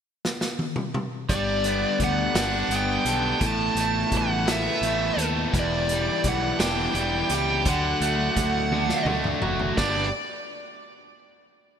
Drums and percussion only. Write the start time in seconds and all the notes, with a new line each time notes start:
0.25 snare
0.41 snare
0.59 high tom
0.76 mid tom
0.94 mid tom
1.29 kick, closed hi-hat
1.64 closed hi-hat
2.00 kick, closed hi-hat
2.35 snare, closed hi-hat
2.71 closed hi-hat
3.06 closed hi-hat
3.41 kick, closed hi-hat
3.77 closed hi-hat
4.12 kick, closed hi-hat
4.48 snare, closed hi-hat
4.83 closed hi-hat
5.19 closed hi-hat
5.54 kick, closed hi-hat
5.89 closed hi-hat
6.24 kick, closed hi-hat
6.60 snare, closed hi-hat
6.95 closed hi-hat
7.30 closed hi-hat
7.65 kick, closed hi-hat
8.02 closed hi-hat
8.37 kick, closed hi-hat
8.71 high tom
8.89 snare
9.06 mid tom
9.24 mid tom
9.42 floor tom
9.59 floor tom
9.77 kick, snare